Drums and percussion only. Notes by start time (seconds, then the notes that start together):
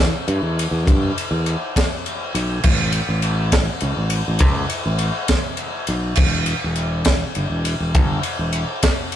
0.28 ride
0.59 ride
0.87 kick, ride
1.18 ride
1.46 ride
1.76 kick, snare, ride
2.06 ride
2.35 ride
2.63 kick, crash
2.92 ride
3.22 ride
3.52 kick, snare, ride
3.80 ride
4.10 ride
4.39 kick, ride
4.70 ride
4.98 ride
5.28 kick, snare, ride
5.57 ride
5.87 ride
6.16 kick, crash
6.46 ride
6.75 ride
7.05 kick, snare, ride
7.35 ride
7.65 ride
7.95 kick, ride
8.23 ride
8.53 ride
8.83 kick, snare, ride
9.12 ride